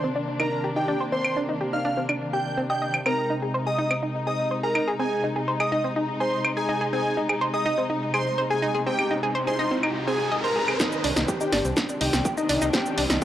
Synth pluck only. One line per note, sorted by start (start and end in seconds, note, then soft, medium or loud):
0.04 0.09 C4 medium
0.16 0.21 D4 medium
0.40 0.45 D#4 medium
0.64 0.72 G4 medium
0.76 0.84 D#4 medium
0.88 0.91 D4 medium
1.00 1.05 C5 medium
1.12 1.17 C4 medium
1.37 1.42 D4 medium
1.49 1.56 D#4 medium
1.61 1.68 G4 medium
1.73 1.80 D#4 medium
1.85 1.88 D4 loud
1.97 2.02 C4 medium
2.09 2.14 D4 medium
2.33 2.41 G4 medium
2.58 2.63 C4 loud
2.70 2.77 D#5 medium
2.82 2.89 D#5 medium
3.06 3.11 C4 medium
3.30 3.35 D#4 medium
3.42 3.50 G#4 medium
3.54 3.62 C5 medium
3.67 3.74 G#4 medium
3.78 3.81 D#4 loud
3.91 3.96 C4 medium
4.03 4.08 D#4 medium
4.27 4.32 G#4 medium
4.51 4.59 C5 medium
4.63 4.71 G#4 medium
4.75 4.78 D#4 medium
4.88 4.92 G#4 medium
4.99 5.04 C4 medium
5.24 5.29 D#4 medium
5.36 5.43 G#4 medium
5.48 5.55 C5 medium
5.60 5.67 G#4 medium
5.72 5.75 D#4 loud
5.84 5.89 C4 medium
5.96 6.01 D#4 medium
6.20 6.25 G#4 medium
6.45 6.52 C5 medium
6.57 6.64 G#4 medium
6.69 6.72 D#4 medium
6.81 6.86 G#4 medium
6.93 6.98 C4 medium
7.17 7.22 D#4 medium
7.29 7.37 G#4 medium
7.41 7.49 C5 medium
7.54 7.61 G#4 medium
7.66 7.69 D#4 loud
7.78 7.83 C4 medium
7.90 7.95 D#4 medium
8.14 8.19 G#4 medium
8.38 8.46 C5 medium
8.50 8.58 G#4 medium
8.62 8.65 D#4 loud
8.75 8.79 G#4 medium
8.86 8.92 C4 medium
9.11 9.16 D#4 medium
9.23 9.30 G#4 medium
9.35 9.43 C5 medium
9.47 9.55 G#4 medium
9.59 9.62 D#4 loud
9.71 9.76 C4 medium
9.83 9.88 D#4 medium
10.07 10.10 C4 medium
10.32 10.37 D#5 medium
10.44 10.47 C5 medium
10.56 10.59 G#4 medium
10.68 10.71 G#4 medium
10.80 10.85 C4 medium
11.04 11.09 D4 medium
11.16 11.24 D#4 medium
11.28 11.36 G4 medium
11.41 11.48 D#4 medium
11.53 11.56 D4 loud
11.65 11.70 C4 medium
11.77 11.82 D4 medium
12.01 12.06 D#4 medium
12.25 12.33 G4 medium
12.38 12.45 D#4 medium
12.49 12.52 D4 medium
12.62 12.67 D#4 loud
12.74 12.79 C4 medium
12.98 13.03 D4 medium
13.10 13.17 D#4 medium